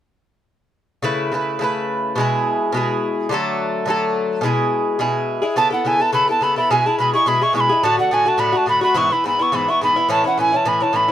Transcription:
1.03 C#3 A3 E4 B4
1.32 C#3 A3 E4 B4
1.59 C#3 A3 E4
1.64 B4
2.16 B2 G#3 E4
2.21 G#4
2.72 B2 G#3 E4
2.77 G#4
3.29 D3 F#3 A3
3.34 A4
3.86 D3 F#3 A3
3.90 A4
4.41 B2 G#3 E4
4.46 G#4
4.99 B2 G#3 E4 G#4
5.42 G#3 E4 G#4
5.56 C#3 B3 E4 A4 A5
5.70 B3 E4 A4 F#5
5.85 C#3 B3 E4 A4 G#5
6.00 B3 E4 A4 A5
6.12 C#3 B3 E4 A4 B5
6.28 B3 E4 A4 A5
6.41 C#3 B3 E4 A4 B5
6.56 B3 E4 A4 B5
6.70 B2 G#3 E4 G#4 G#5
6.86 G#3 E4 G#4 A5
6.98 B2 G#3 E4 G#4 B5
7.14 G#3 E4 G#4 C#6
7.26 B2 G#3 E4 G#4 B5
7.41 G#3 E4 G#4 C#6
7.53 B2 G#3 E4 G#4 C#6
7.60 B5
7.69 G#3 E4 G#4
7.83 A2 D3 A3 F#4 A5
7.97 D3 A3 F#4 F#5
8.11 A2 D3 A3 F#4 G#5
8.25 D3 A3 F#4 A5
8.38 A2 D3 A3 F#4 B5
8.52 D3 A3 F#4
8.57 A5
8.66 A2 D3 A3 F#4 B5
8.81 D3 A3 F#4 B5
8.94 G#2 E3 B3 E4 C#6
9.10 E3 B3 E4 B5
9.24 G#2 E3 B3 E4 B5
9.39 E3 B3 E4 C#6
9.52 G#2 E3 B3 E4 B5
9.68 E3 B3 E4 C#6
9.81 G#2 E3 B3 E4 B5
9.96 E3 B3 E4
10.09 A2 E3 C#4 E4 A5
10.24 E3 C#4 E4 F#5
10.38 A2 E3 C#4 E4 G#5
10.52 E3 C#4 E4 A5
10.65 A2 E3 C#4 E4 B5
10.80 E3 C#4 E4 A5
10.93 A2 E3 C#4 E4 B5
11.08 E4

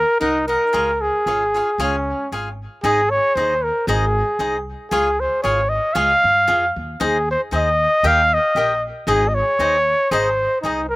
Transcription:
Already playing: A#4
0.21 C2 D#4 A#4 D#5 F#5
0.48 D#4 A#4 D#5 F#5
0.73 C#2 F4 G#4 C#5 F5
1.01 G#4
1.26 G#1 F4 G#4 C#5 F5
1.54 F4 G#4 C#5 F5
1.78 C#2 C#4 F4 G#4 C#5 F5
2.32 G#1 F4 G#4 C#5 F5
2.83 G#1 D#4 G#4 C5 D#5
3.10 C#5
3.35 D#2 D#4 G#4 C5 D#5
3.64 A#4
3.87 G#1 D#4 G#4 C5 D#5
4.39 C2 D#4 G#4 C5 D#5
4.91 C#2 F4 G#4 C#5 F5
5.20 C5
5.43 G#1 F4 G#4 C#5 F5
5.69 D#5
5.94 C#2 F4 G#4 C#5 F5
6.24 G2
6.48 F2 F4 G#4 C#5 F5
6.76 D#2
7.00 D#2 D#4 G#4 C5 D#5
7.31 C5
7.51 D#2 D#4 G#4 C5 D#5
8.03 D#2 G4 A#4 D#5 F5 G5
8.34 D#5
8.55 A#1 G4 A#4 D#5 G5
9.07 G#1 D#4 G#4 C5 D#5
9.29 D#5
9.35 C#5
9.59 D#2 D#4 G#4 C5 D#5
10.11 G#1 D#4 G#4 C5 D#5
10.62 C2 D#4 G#4 C5
10.66 D#5
10.89 A#4

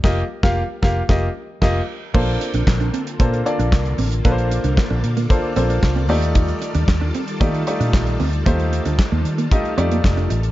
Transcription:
0.04 F1 A#3 F4 G4 D#5, kick, snare, crash
0.43 F1 A#3 F4 G4 F5, kick, snare
0.82 F1 A#3 F4 G4 F5, kick, snare
1.09 F1 A#3 F4 G4 D#5, kick, snare
1.62 F1 A#3 F4 G4 D#5, kick, snare, crash
2.14 A#1 D3 A#3 C4 D4 F4 A4 C5, kick, crash
2.41 muted clean electric guitar stroke, closed hi-hat
2.54 A#1 D4, closed hi-hat
2.67 A#1, muted clean electric guitar stroke, kick, snare, clap
2.80 D4, closed hi-hat
2.93 C4, closed hi-hat
3.07 closed hi-hat
3.19 A#2 A#3 D4 F4 A4 C5, kick, closed hi-hat
3.33 muted clean electric guitar stroke, closed hi-hat
3.46 A#3 D4 F4 A4 D5, closed hi-hat
3.59 A#1 D4, closed hi-hat
3.72 C2, kick, snare, clap
3.85 closed hi-hat
3.98 A1 C4, open hi-hat
4.12 closed hi-hat
4.25 A#1 A#3 D4 F4 A4 B4 D5, kick, closed hi-hat
4.32 C5
4.38 closed hi-hat
4.51 muted clean electric guitar stroke, closed hi-hat
4.64 C2 D4, closed hi-hat
4.77 kick, snare, clap
4.90 A#1 D4
5.04 A#2, muted clean electric guitar stroke, closed hi-hat
5.17 A#3, closed hi-hat
5.30 A#3 D4 F4 A4 C5, muted clean electric guitar stroke, kick, closed hi-hat
5.56 A#1 A#3 C4 D4 F4 A4 C5, closed hi-hat
5.70 D4, closed hi-hat
5.83 C2, kick, snare, clap
5.96 C4, closed hi-hat
6.09 D#2 D#3 G3 A3 A#3 D#4 F4 G4 D5, open hi-hat
6.22 closed hi-hat
6.35 D#4, kick, closed hi-hat
6.48 closed hi-hat
6.62 muted clean electric guitar stroke, closed hi-hat
6.75 D#2 D4, closed hi-hat
6.88 D#2, muted clean electric guitar stroke, kick, snare, clap
7.01 D4
7.14 C4, closed hi-hat
7.28 closed hi-hat
7.40 D#3 A3 A#3 D#4 F4 G4 D5, kick, closed hi-hat
7.54 muted clean electric guitar stroke, closed hi-hat
7.67 A3 D#4 F4 G4 D5, closed hi-hat
7.80 A#2 D4, closed hi-hat
7.93 A#1, kick, snare, clap
8.07 closed hi-hat
8.20 D2 C4, open hi-hat
8.33 closed hi-hat
8.46 D#2 A3 A#3 D#4 F4 G4 C5, kick, closed hi-hat
8.60 closed hi-hat
8.73 muted clean electric guitar stroke, closed hi-hat
8.85 D2 D4, closed hi-hat
8.99 kick, snare, clap
9.12 D#2 A#3
9.25 D#3, muted clean electric guitar stroke, closed hi-hat
9.38 A#3, closed hi-hat
9.51 A3 D#4 F4 G4 D#5, muted clean electric guitar stroke, kick, closed hi-hat
9.65 closed hi-hat
9.77 F2 A3 C4 D#4 F4 G4 D5, closed hi-hat
9.91 A#3, closed hi-hat
10.04 F1, kick, snare, clap
10.17 D4, closed hi-hat
10.30 A1 D#4, closed hi-hat
10.43 closed hi-hat

